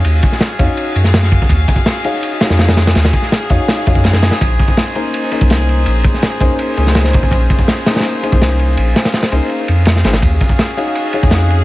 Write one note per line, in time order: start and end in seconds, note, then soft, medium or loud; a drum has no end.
0.00 4.37 C#4 medium
0.00 0.57 D#4 medium
0.00 0.57 F#4 medium
0.00 4.37 F#4 medium
0.00 0.57 G#4 medium
0.00 10.19 G#4 medium
0.00 0.57 C#5 medium
0.00 0.57 F5 loud
0.00 4.37 F5 medium
0.04 0.21 D#2 loud
0.04 ride loud
0.22 kick medium
0.22 ride medium
0.32 snare soft
0.41 snare loud
0.41 ride medium
0.59 0.67 F2 medium
0.59 0.93 D#4 medium
0.59 0.93 F#4 medium
0.59 0.93 G#4 medium
0.59 0.93 C#5 medium
0.59 0.93 F5 medium
0.59 kick medium
0.59 ride medium
0.77 ride medium
0.95 1.40 F#2 medium
0.95 ride medium
1.04 snare soft
1.14 snare loud
1.14 ride medium
1.23 snare medium
1.32 kick loud
1.32 ride medium
1.42 kick loud
1.49 1.66 D#2 loud
1.49 kick loud
1.49 ride medium
1.68 kick medium
1.68 ride medium
1.76 kick medium
1.86 snare loud
1.86 ride medium
2.04 2.39 D#4 medium
2.04 2.39 F#4 medium
2.04 2.39 G#4 medium
2.04 2.39 C#5 medium
2.04 2.39 F5 loud
2.04 ride medium
2.23 ride medium
2.41 3.48 D#4 medium
2.41 3.48 F#4 medium
2.41 3.48 G#4 medium
2.41 3.48 C#5 medium
2.41 3.48 F5 loud
2.41 snare loud
2.41 ride medium
2.49 2.94 F2 medium
2.49 snare loud
2.49 ride medium
2.59 snare loud
2.59 ride medium
2.68 snare loud
2.68 ride medium
2.77 snare loud
2.77 ride medium
2.87 snare loud
2.87 ride medium
2.95 3.12 D#2 loud
2.95 snare loud
2.95 ride medium
3.05 snare loud
3.05 ride medium
3.13 kick medium
3.13 ride medium
3.22 snare soft
3.32 snare loud
3.32 ride medium
3.49 3.58 F2 medium
3.49 3.84 D#4 medium
3.49 3.84 F#4 medium
3.49 3.84 G#4 medium
3.49 3.84 C#5 medium
3.49 3.84 F5 loud
3.49 kick medium
3.49 ride medium
3.68 snare loud
3.68 ride medium
3.86 4.31 F#2 medium
3.86 4.40 D#4 medium
3.86 4.40 F#4 medium
3.86 4.40 G#4 medium
3.86 4.40 C#5 medium
3.86 4.40 F5 medium
3.86 kick loud
3.86 ride medium
3.95 kick medium
4.04 snare loud
4.04 ride medium
4.13 snare loud
4.13 ride medium
4.23 snare loud
4.23 ride medium
4.31 snare medium
4.31 ride medium
4.41 4.57 A#1 loud
4.41 10.19 C#4 medium
4.41 7.29 D#4 medium
4.41 10.19 C5 medium
4.41 kick loud
4.41 ride loud
4.59 kick loud
4.59 ride medium
4.68 kick loud
4.77 snare loud
4.77 ride medium
4.95 5.30 A#3 medium
4.95 5.30 C#4 medium
4.95 5.30 D#4 medium
4.95 5.30 G#4 medium
4.95 5.30 C5 loud
4.95 ride medium
5.14 ride medium
5.31 6.39 A#3 medium
5.31 6.39 C#4 medium
5.31 6.39 D#4 medium
5.31 6.39 G#4 medium
5.31 6.39 C5 medium
5.31 ride medium
5.41 5.85 C2 loud
5.41 kick loud
5.50 snare loud
5.50 ride medium
5.69 ride medium
5.86 6.03 A#1 loud
5.86 ride medium
6.05 kick loud
6.05 ride medium
6.14 snare soft
6.22 snare loud
6.22 ride medium
6.40 6.49 C2 loud
6.40 6.75 A#3 medium
6.40 6.75 C#4 medium
6.40 6.75 D#4 medium
6.40 6.75 G#4 medium
6.40 6.75 C5 loud
6.40 kick medium
6.40 ride medium
6.59 ride medium
6.77 7.21 C#2 medium
6.77 7.84 A#3 medium
6.77 7.84 C#4 medium
6.77 7.84 D#4 medium
6.77 7.84 G#4 medium
6.77 7.84 C5 loud
6.77 ride medium
6.87 snare medium
6.95 snare loud
6.95 ride medium
7.04 snare medium
7.13 kick loud
7.13 ride medium
7.23 kick medium
7.31 7.48 A#1 loud
7.31 11.64 F5 medium
7.31 kick loud
7.31 ride medium
7.50 kick loud
7.50 ride medium
7.59 kick loud
7.68 snare loud
7.68 ride medium
7.86 8.21 A#3 medium
7.86 8.21 C#4 medium
7.86 8.21 D#4 medium
7.86 8.21 G#4 medium
7.86 8.21 C5 loud
7.86 snare loud
7.86 ride medium
7.95 snare medium
7.95 ride medium
8.00 snare medium
8.00 ride medium
8.04 ride loud
8.23 9.30 A#3 medium
8.23 9.30 C#4 medium
8.23 9.30 D#4 medium
8.23 9.30 G#4 medium
8.23 9.30 C5 loud
8.23 ride medium
8.32 8.76 C2 loud
8.32 kick loud
8.42 snare loud
8.42 ride medium
8.59 ride medium
8.77 8.94 A#1 loud
8.77 ride medium
8.96 snare loud
8.96 ride medium
9.05 snare loud
9.05 ride medium
9.14 snare loud
9.14 ride medium
9.23 snare medium
9.23 ride medium
9.32 9.40 C2 medium
9.32 9.66 A#3 medium
9.32 9.66 C#4 medium
9.32 9.66 D#4 medium
9.32 9.66 G#4 medium
9.32 9.66 C5 loud
9.32 ride medium
9.49 ride medium
9.68 10.03 F2 medium
9.68 ride medium
9.85 snare loud
9.85 ride medium
9.96 snare medium
10.04 10.21 G#1 medium
10.04 10.09 A#3 medium
10.04 10.09 C#4 medium
10.04 10.09 D#4 medium
10.04 10.09 G#4 medium
10.04 10.09 C5 medium
10.04 snare loud
10.04 ride medium
10.13 snare loud
10.13 ride medium
10.22 10.39 D#2 loud
10.22 11.64 C#4 medium
10.22 11.64 F#4 medium
10.22 11.64 G#4 loud
10.22 kick loud
10.22 ride medium
10.41 kick medium
10.41 ride medium
10.49 kick loud
10.59 snare loud
10.59 ride medium
10.77 11.12 D#4 medium
10.77 11.12 F#4 medium
10.77 11.12 G#4 medium
10.77 11.11 C#5 medium
10.77 11.12 F5 loud
10.77 ride medium
10.95 ride medium
11.13 11.64 D#4 medium
11.13 11.64 F#4 medium
11.13 11.64 G#4 medium
11.13 11.64 C#5 medium
11.13 11.64 F5 medium
11.13 ride medium
11.23 11.64 F2 loud
11.23 kick medium
11.31 snare loud
11.31 ride medium
11.50 ride medium